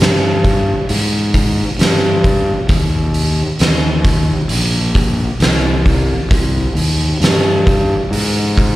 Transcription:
0.00 0.71 G2 medium
0.00 snare loud
0.00 open hi-hat medium
0.44 kick medium
0.44 open hi-hat medium
0.89 1.61 G#2 medium
0.89 open hi-hat medium
1.34 kick medium
1.34 open hi-hat medium
1.79 2.51 G2 medium
1.79 snare loud
1.79 open hi-hat medium
2.24 kick medium
2.24 open hi-hat medium
2.69 3.41 D#2 loud
2.69 kick loud
2.69 open hi-hat medium
3.14 open hi-hat medium
3.59 4.32 D#2 medium
3.59 snare loud
3.59 open hi-hat medium
4.04 kick medium
4.04 open hi-hat medium
4.49 5.22 A#1 medium
4.49 open hi-hat medium
4.95 kick medium
4.95 open hi-hat medium
5.40 6.12 C2 medium
5.40 snare loud
5.40 open hi-hat medium
5.86 kick medium
5.86 open hi-hat soft
6.31 6.67 C2 medium
6.31 kick loud
6.31 open hi-hat medium
6.75 7.11 D#2 medium
6.75 open hi-hat medium
7.21 7.93 G2 medium
7.21 snare loud
7.21 open hi-hat medium
7.67 kick medium
7.67 open hi-hat medium
8.11 8.76 G#2 medium
8.11 open hi-hat medium
8.58 kick medium
8.58 open hi-hat medium

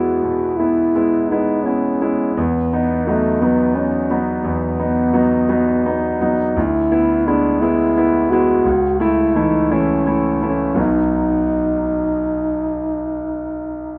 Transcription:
0.00 2.37 E2 soft
0.00 0.95 G#3 soft
0.00 0.60 B3 soft
0.00 0.60 E4 soft
0.00 0.58 F#4 medium
0.23 0.58 B2 soft
0.57 0.92 B3 soft
0.57 1.30 E4 medium
0.57 0.92 E4 soft
0.95 1.27 G#3 soft
0.95 1.27 B3 soft
0.95 1.27 E4 soft
1.29 1.63 G#3 soft
1.29 1.63 B3 soft
1.29 1.65 D#4 medium
1.29 1.63 E4 soft
1.64 1.98 B3 soft
1.64 2.36 C#4 medium
1.64 1.98 E4 soft
2.01 2.34 G#3 soft
2.01 2.34 B3 soft
2.01 2.34 E4 soft
2.37 2.72 E2 soft
2.37 3.09 B3 medium
2.73 3.04 B3 soft
2.73 3.05 D#4 soft
3.07 3.38 F#3 soft
3.07 3.43 A3 medium
3.07 3.39 B3 soft
3.07 3.39 D#4 soft
3.41 3.72 F#3 soft
3.41 3.77 B3 medium
3.41 3.72 B3 soft
3.41 3.73 D#4 soft
3.75 4.07 B3 soft
3.75 4.21 C#4 medium
3.75 4.07 D#4 soft
4.10 4.42 F#3 soft
4.10 4.42 B3 soft
4.10 4.42 D#4 soft
4.44 4.79 E2 soft
4.44 6.17 B3 medium
4.79 5.11 B3 soft
4.79 5.11 D#4 soft
5.13 5.45 F#3 soft
5.13 5.45 B3 soft
5.13 5.46 D#4 soft
5.49 5.81 F#3 soft
5.49 5.81 B3 soft
5.49 5.82 D#4 soft
5.86 6.18 B3 soft
5.86 6.18 D#4 soft
6.21 6.53 F#3 soft
6.21 6.53 B3 soft
6.21 6.53 D#4 soft
6.56 6.91 D2 soft
6.56 7.29 E4 medium
6.92 7.24 B3 soft
6.92 7.24 E4 soft
7.27 7.59 G#3 soft
7.27 7.59 B3 soft
7.27 7.62 D4 medium
7.27 7.59 E4 soft
7.61 7.93 G#3 soft
7.61 7.93 B3 soft
7.61 8.32 E4 medium
7.61 7.94 E4 soft
7.97 8.28 B3 soft
7.97 8.28 E4 soft
8.30 8.63 G#3 soft
8.30 8.63 B3 soft
8.30 8.63 E4 soft
8.30 9.00 F#4 medium
8.65 8.99 C#2 soft
9.00 9.32 A3 soft
9.00 9.32 E4 soft
9.00 9.37 E4 medium
9.36 9.67 E3 soft
9.36 9.68 A3 soft
9.36 9.74 D#4 medium
9.36 9.68 E4 soft
9.71 10.03 E3 soft
9.71 10.03 A3 soft
9.71 10.43 C#4 medium
9.71 10.03 E4 soft
10.06 10.39 A3 soft
10.06 10.39 E4 soft
10.42 10.75 E3 soft
10.42 10.76 A3 soft
10.42 10.81 C#4 medium
10.42 10.76 E4 soft
10.74 13.98 B1 soft
10.74 13.98 F#3 soft
10.74 13.98 B3 soft
10.74 13.98 D#4 soft
10.80 13.98 D#4 medium

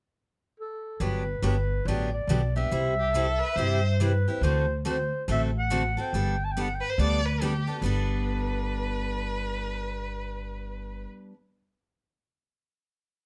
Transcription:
0.60 1.04 A4 medium
1.00 1.34 G1 medium
1.00 1.22 D3 medium
1.00 1.22 F#3 medium
1.00 1.22 B3 medium
1.00 1.22 D4 medium
1.00 1.23 G4 medium
1.00 1.44 B4 medium
1.42 1.79 G1 medium
1.42 1.54 D3 medium
1.42 1.55 F#3 medium
1.42 1.55 B3 medium
1.42 1.55 D4 medium
1.42 1.55 G4 medium
1.42 1.88 B4 medium
1.85 2.22 A1 medium
1.85 2.09 D3 medium
1.85 2.09 F#3 medium
1.85 2.09 B3 medium
1.85 2.09 D4 medium
1.85 2.09 G4 medium
1.85 2.13 D5 loud
2.13 2.53 D5 medium
2.27 2.64 B1 medium
2.27 2.40 D3 medium
2.27 2.40 F#3 medium
2.27 2.41 B3 medium
2.27 2.41 D4 medium
2.27 2.41 G4 medium
2.56 2.72 B3 soft
2.56 2.71 D4 soft
2.56 2.71 G4 medium
2.56 3.96 E5 loud
2.71 3.40 C2 medium
2.71 2.93 C3 medium
2.71 2.93 G3 medium
2.71 2.93 C4 medium
2.71 2.93 E4 medium
2.71 2.93 G4 medium
2.99 3.13 G4 medium
3.13 3.25 C3 medium
3.13 3.26 G3 medium
3.13 3.26 C4 medium
3.13 3.26 E4 medium
3.13 3.26 G4 medium
3.13 3.40 A4 medium
3.39 3.57 B4 medium
3.56 4.24 G2 medium
3.56 3.79 C3 medium
3.56 3.79 G3 medium
3.56 3.79 C4 medium
3.56 3.79 E4 medium
3.56 3.79 G4 medium
3.56 3.91 C5 loud
4.00 4.11 C3 medium
4.00 4.11 G3 medium
4.00 4.11 C4 medium
4.00 4.11 E4 medium
4.00 4.12 G4 medium
4.00 4.40 B4 medium
4.28 4.43 C4 soft
4.28 4.42 E4 soft
4.28 4.42 G4 soft
4.41 5.09 D2 medium
4.41 4.64 D3 medium
4.41 4.64 A3 medium
4.41 4.64 C4 medium
4.41 4.65 F#4 medium
4.41 4.65 A4 medium
4.41 4.82 C5 medium
4.85 4.96 D3 medium
4.85 4.96 A3 medium
4.85 4.96 C4 medium
4.85 4.97 F#4 medium
4.85 4.97 A4 medium
4.85 5.26 C5 medium
5.28 5.96 A1 medium
5.28 5.49 D3 medium
5.28 5.49 A3 medium
5.28 5.49 C4 medium
5.28 5.50 F#4 medium
5.28 5.50 A4 medium
5.28 5.42 E5 loud
5.58 6.01 F#5 loud
5.70 5.81 D3 medium
5.70 5.82 A3 medium
5.70 5.82 C4 medium
5.70 5.82 F#4 medium
5.70 5.82 A4 medium
5.97 6.13 C4 soft
5.97 6.12 F#4 medium
5.97 6.12 A4 soft
5.97 6.46 G5 loud
6.13 6.81 G1 medium
6.13 6.35 G3 medium
6.13 6.35 B3 medium
6.13 6.35 D4 medium
6.13 6.35 A4 medium
6.45 6.53 A5 medium
6.52 6.63 G5 medium
6.57 6.67 G3 medium
6.57 6.67 B3 medium
6.57 6.68 D4 medium
6.57 6.67 A4 medium
6.62 6.76 F#5 medium
6.74 6.84 G5 medium
6.81 6.91 B4 medium
6.89 7.01 C5 medium
6.98 7.66 D2 medium
6.98 7.20 G3 medium
6.98 7.20 B3 medium
6.98 7.20 D4 medium
6.98 7.20 A4 medium
6.98 7.27 D5 loud
7.25 7.44 B4 medium
7.41 7.52 G3 medium
7.41 7.52 B3 medium
7.41 7.52 D4 medium
7.41 7.83 G4 medium
7.41 7.53 A4 medium
7.67 7.82 B3 soft
7.67 7.82 D4 soft
7.67 7.82 A4 soft
7.82 11.04 G1 medium
7.82 11.32 G3 medium
7.82 11.34 B3 medium
7.82 11.35 D4 medium
7.82 11.06 B4 medium
7.86 11.36 A4 medium

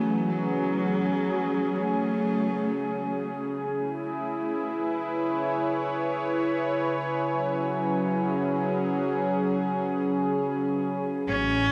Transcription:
0.00 11.27 C#3 medium
0.00 0.90 E3 medium
0.00 3.30 F#3 medium
0.00 0.31 A3 medium
0.00 4.61 C#4 medium
0.00 11.28 G#4 medium
0.00 11.31 G#4 medium
0.00 0.90 B4 medium
0.00 0.91 C#5 medium
0.00 11.32 G#5 medium
0.13 4.90 G#4 medium
0.30 1.82 F#3 medium
1.81 3.31 A3 medium
3.73 8.88 E4 medium
4.52 8.90 B4 medium
5.08 8.90 C#5 medium
7.30 11.30 F#3 medium
7.39 11.72 C#4 medium
7.93 11.72 G#4 medium
11.27 11.72 A1 medium
11.27 11.72 C#3 medium
11.27 11.72 C#4 loud
11.27 11.72 G#4 medium
11.27 11.72 C#5 medium
11.27 11.72 C#6 medium

